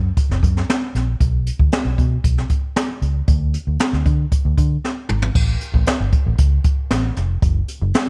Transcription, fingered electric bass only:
0.30 F#1
0.43 F#2
0.95 A#1
1.20 B1
1.60 D2
1.85 B1
1.98 B2
2.24 B1
3.02 C#2
3.28 D2
3.67 D2
3.93 D2
4.06 D3
4.45 D2
4.58 D3
5.10 G#1
5.35 A1
5.74 A1
6.00 G1
6.27 A1
6.39 C#2
6.91 A1
7.17 F1
7.42 F#1
7.82 F#1

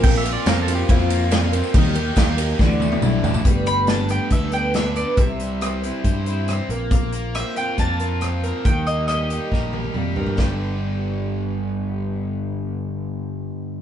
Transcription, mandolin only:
3.67 B5
3.89 A5
4.11 G5
4.32 E5
4.53 G5
4.75 E5
4.96 D5
5.18 E5
7.35 E5
7.57 G5
7.79 A5
8.65 G5
8.87 D#5
9.08 D#5

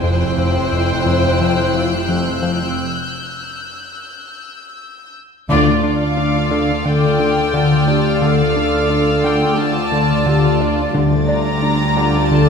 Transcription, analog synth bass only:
0.04 F2
0.38 F2
0.72 F2
1.06 F2
1.41 F3
1.74 F3
2.09 F2
2.43 F3
5.49 D3
5.84 D4
6.17 D4
6.51 D3
6.85 D3
7.20 D3
7.54 D3
7.88 D4
8.22 D3
8.56 D4
8.90 D4
9.24 D3
9.58 D3
9.92 D3
10.26 D3
10.61 D4
10.95 D3
11.29 D4
11.63 D4
11.97 D3
12.31 D3

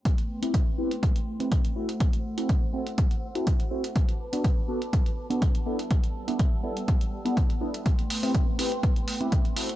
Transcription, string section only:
0.05 A3 B3 G5 C6
1.76 C5 F#5 E6
3.96 B4 A5 D6
5.66 G3 B3 E6
7.86 A3 G5 C6
9.57 A3 C5 F#5 E6

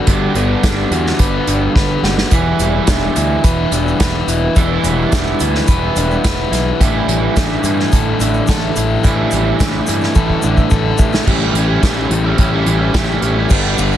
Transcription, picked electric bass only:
0.07 G1
0.34 G1
0.64 G1
0.91 E2
1.19 G1
1.47 G1
1.75 G1
2.03 G1
2.31 E1
2.59 E1
2.87 E1
3.17 D2
3.44 E1
3.72 E1
4.00 E1
4.27 E1
4.56 E1
4.84 E1
5.12 E1
5.41 D2
5.68 E1
5.96 E1
6.25 E1
6.52 B1
6.80 A1
7.07 A1
7.36 A1
7.64 G2
7.92 A1
8.20 A1
8.48 A1
8.77 A1
9.04 A1
9.33 A1
9.60 A1
9.89 G2
10.16 A1
10.44 A1
10.72 A1
10.99 A1
11.27 A1
11.54 A1
11.83 A1
12.10 A1
12.39 A1
12.66 A1
12.94 A1
13.22 A1
13.50 G1
13.78 G1

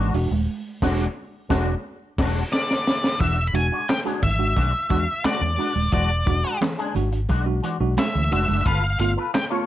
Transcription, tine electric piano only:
Already playing: E3
0.15 G#3 D4 F#4
0.82 G#3 D4 F#4
1.50 G#3 D4 F#4
3.20 E3
3.54 G#3 D4 F#4
4.05 G#3 D4 F#4
4.22 E3
4.39 G#3 D4 F#4
4.90 G#3 D4 F#4
5.25 D4 F#4
5.42 E3
5.58 G#3 D4 F#4
5.92 E3
6.26 G#3 D4 F#4
6.61 E3
6.95 G#3 D4 F#4
7.12 D4 F#4
7.46 G#3 D4 F#4
7.63 E3
7.80 G#3 D4 F#4
8.15 E3
8.32 G#3 D4 F#4
8.66 G2 D3
9.00 A3 B3 F4
9.17 B3 F4
9.52 A3 B3 F4

